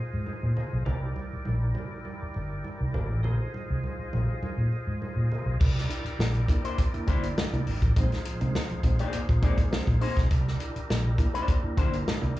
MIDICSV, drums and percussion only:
0, 0, Header, 1, 2, 480
1, 0, Start_track
1, 0, Tempo, 593472
1, 697, Time_signature, 4, 2, 24, 8
1, 4056, Tempo, 587659
1, 10086, End_track
2, 0, Start_track
2, 0, Title_t, "Drums"
2, 212, Note_on_c, 9, 63, 66
2, 293, Note_off_c, 9, 63, 0
2, 459, Note_on_c, 9, 64, 80
2, 540, Note_off_c, 9, 64, 0
2, 696, Note_on_c, 9, 62, 40
2, 696, Note_on_c, 9, 64, 95
2, 777, Note_off_c, 9, 62, 0
2, 777, Note_off_c, 9, 64, 0
2, 937, Note_on_c, 9, 62, 38
2, 937, Note_on_c, 9, 63, 59
2, 1018, Note_off_c, 9, 62, 0
2, 1018, Note_off_c, 9, 63, 0
2, 1174, Note_on_c, 9, 62, 32
2, 1174, Note_on_c, 9, 63, 68
2, 1255, Note_off_c, 9, 62, 0
2, 1255, Note_off_c, 9, 63, 0
2, 1414, Note_on_c, 9, 62, 31
2, 1414, Note_on_c, 9, 63, 65
2, 1414, Note_on_c, 9, 64, 60
2, 1495, Note_off_c, 9, 62, 0
2, 1495, Note_off_c, 9, 63, 0
2, 1495, Note_off_c, 9, 64, 0
2, 1658, Note_on_c, 9, 63, 69
2, 1738, Note_off_c, 9, 63, 0
2, 1894, Note_on_c, 9, 62, 29
2, 1975, Note_off_c, 9, 62, 0
2, 2139, Note_on_c, 9, 63, 61
2, 2220, Note_off_c, 9, 63, 0
2, 2379, Note_on_c, 9, 62, 36
2, 2379, Note_on_c, 9, 64, 84
2, 2460, Note_off_c, 9, 62, 0
2, 2460, Note_off_c, 9, 64, 0
2, 2621, Note_on_c, 9, 64, 83
2, 2702, Note_off_c, 9, 64, 0
2, 2864, Note_on_c, 9, 62, 35
2, 2864, Note_on_c, 9, 63, 55
2, 2945, Note_off_c, 9, 62, 0
2, 2945, Note_off_c, 9, 63, 0
2, 3102, Note_on_c, 9, 63, 65
2, 3183, Note_off_c, 9, 63, 0
2, 3341, Note_on_c, 9, 63, 67
2, 3341, Note_on_c, 9, 64, 67
2, 3422, Note_off_c, 9, 63, 0
2, 3422, Note_off_c, 9, 64, 0
2, 3581, Note_on_c, 9, 62, 35
2, 3581, Note_on_c, 9, 63, 67
2, 3661, Note_off_c, 9, 62, 0
2, 3661, Note_off_c, 9, 63, 0
2, 3820, Note_on_c, 9, 62, 28
2, 3901, Note_off_c, 9, 62, 0
2, 4059, Note_on_c, 9, 63, 61
2, 4141, Note_off_c, 9, 63, 0
2, 4302, Note_on_c, 9, 62, 38
2, 4302, Note_on_c, 9, 64, 70
2, 4383, Note_off_c, 9, 62, 0
2, 4383, Note_off_c, 9, 64, 0
2, 4539, Note_on_c, 9, 49, 106
2, 4540, Note_on_c, 9, 36, 108
2, 4621, Note_off_c, 9, 49, 0
2, 4622, Note_off_c, 9, 36, 0
2, 4668, Note_on_c, 9, 42, 35
2, 4677, Note_on_c, 9, 38, 38
2, 4750, Note_off_c, 9, 42, 0
2, 4758, Note_off_c, 9, 38, 0
2, 4781, Note_on_c, 9, 42, 83
2, 4862, Note_off_c, 9, 42, 0
2, 4906, Note_on_c, 9, 42, 53
2, 4988, Note_off_c, 9, 42, 0
2, 5025, Note_on_c, 9, 38, 85
2, 5107, Note_off_c, 9, 38, 0
2, 5142, Note_on_c, 9, 42, 35
2, 5224, Note_off_c, 9, 42, 0
2, 5257, Note_on_c, 9, 36, 92
2, 5262, Note_on_c, 9, 42, 76
2, 5338, Note_off_c, 9, 36, 0
2, 5344, Note_off_c, 9, 42, 0
2, 5389, Note_on_c, 9, 42, 58
2, 5471, Note_off_c, 9, 42, 0
2, 5500, Note_on_c, 9, 42, 89
2, 5501, Note_on_c, 9, 36, 85
2, 5582, Note_off_c, 9, 42, 0
2, 5583, Note_off_c, 9, 36, 0
2, 5628, Note_on_c, 9, 42, 36
2, 5710, Note_off_c, 9, 42, 0
2, 5739, Note_on_c, 9, 42, 74
2, 5740, Note_on_c, 9, 36, 89
2, 5820, Note_off_c, 9, 42, 0
2, 5822, Note_off_c, 9, 36, 0
2, 5868, Note_on_c, 9, 42, 59
2, 5950, Note_off_c, 9, 42, 0
2, 5987, Note_on_c, 9, 38, 122
2, 6068, Note_off_c, 9, 38, 0
2, 6112, Note_on_c, 9, 42, 38
2, 6194, Note_off_c, 9, 42, 0
2, 6222, Note_on_c, 9, 46, 74
2, 6304, Note_off_c, 9, 46, 0
2, 6348, Note_on_c, 9, 36, 88
2, 6351, Note_on_c, 9, 42, 51
2, 6430, Note_off_c, 9, 36, 0
2, 6433, Note_off_c, 9, 42, 0
2, 6464, Note_on_c, 9, 42, 87
2, 6465, Note_on_c, 9, 36, 104
2, 6546, Note_off_c, 9, 42, 0
2, 6547, Note_off_c, 9, 36, 0
2, 6593, Note_on_c, 9, 42, 35
2, 6601, Note_on_c, 9, 38, 40
2, 6674, Note_off_c, 9, 42, 0
2, 6683, Note_off_c, 9, 38, 0
2, 6701, Note_on_c, 9, 42, 95
2, 6782, Note_off_c, 9, 42, 0
2, 6828, Note_on_c, 9, 42, 51
2, 6910, Note_off_c, 9, 42, 0
2, 6946, Note_on_c, 9, 38, 91
2, 7027, Note_off_c, 9, 38, 0
2, 7062, Note_on_c, 9, 42, 37
2, 7143, Note_off_c, 9, 42, 0
2, 7175, Note_on_c, 9, 36, 80
2, 7176, Note_on_c, 9, 42, 72
2, 7257, Note_off_c, 9, 36, 0
2, 7258, Note_off_c, 9, 42, 0
2, 7303, Note_on_c, 9, 42, 62
2, 7385, Note_off_c, 9, 42, 0
2, 7415, Note_on_c, 9, 42, 95
2, 7496, Note_off_c, 9, 42, 0
2, 7545, Note_on_c, 9, 42, 37
2, 7547, Note_on_c, 9, 36, 95
2, 7627, Note_off_c, 9, 42, 0
2, 7629, Note_off_c, 9, 36, 0
2, 7657, Note_on_c, 9, 42, 71
2, 7659, Note_on_c, 9, 36, 103
2, 7739, Note_off_c, 9, 42, 0
2, 7741, Note_off_c, 9, 36, 0
2, 7782, Note_on_c, 9, 36, 97
2, 7784, Note_on_c, 9, 42, 62
2, 7864, Note_off_c, 9, 36, 0
2, 7865, Note_off_c, 9, 42, 0
2, 7905, Note_on_c, 9, 38, 118
2, 7987, Note_off_c, 9, 38, 0
2, 8024, Note_on_c, 9, 36, 92
2, 8029, Note_on_c, 9, 42, 36
2, 8106, Note_off_c, 9, 36, 0
2, 8111, Note_off_c, 9, 42, 0
2, 8138, Note_on_c, 9, 46, 67
2, 8219, Note_off_c, 9, 46, 0
2, 8264, Note_on_c, 9, 36, 84
2, 8268, Note_on_c, 9, 42, 53
2, 8271, Note_on_c, 9, 38, 37
2, 8346, Note_off_c, 9, 36, 0
2, 8350, Note_off_c, 9, 42, 0
2, 8353, Note_off_c, 9, 38, 0
2, 8378, Note_on_c, 9, 42, 84
2, 8381, Note_on_c, 9, 36, 105
2, 8459, Note_off_c, 9, 42, 0
2, 8463, Note_off_c, 9, 36, 0
2, 8519, Note_on_c, 9, 38, 40
2, 8600, Note_off_c, 9, 38, 0
2, 8619, Note_on_c, 9, 42, 89
2, 8700, Note_off_c, 9, 42, 0
2, 8748, Note_on_c, 9, 42, 49
2, 8829, Note_off_c, 9, 42, 0
2, 8866, Note_on_c, 9, 38, 96
2, 8948, Note_off_c, 9, 38, 0
2, 9094, Note_on_c, 9, 36, 91
2, 9099, Note_on_c, 9, 42, 67
2, 9176, Note_off_c, 9, 36, 0
2, 9180, Note_off_c, 9, 42, 0
2, 9229, Note_on_c, 9, 42, 56
2, 9311, Note_off_c, 9, 42, 0
2, 9336, Note_on_c, 9, 42, 85
2, 9338, Note_on_c, 9, 36, 88
2, 9418, Note_off_c, 9, 42, 0
2, 9420, Note_off_c, 9, 36, 0
2, 9577, Note_on_c, 9, 36, 96
2, 9578, Note_on_c, 9, 42, 77
2, 9659, Note_off_c, 9, 36, 0
2, 9660, Note_off_c, 9, 42, 0
2, 9708, Note_on_c, 9, 42, 62
2, 9790, Note_off_c, 9, 42, 0
2, 9826, Note_on_c, 9, 38, 120
2, 9907, Note_off_c, 9, 38, 0
2, 9951, Note_on_c, 9, 42, 33
2, 10032, Note_off_c, 9, 42, 0
2, 10059, Note_on_c, 9, 46, 73
2, 10086, Note_off_c, 9, 46, 0
2, 10086, End_track
0, 0, End_of_file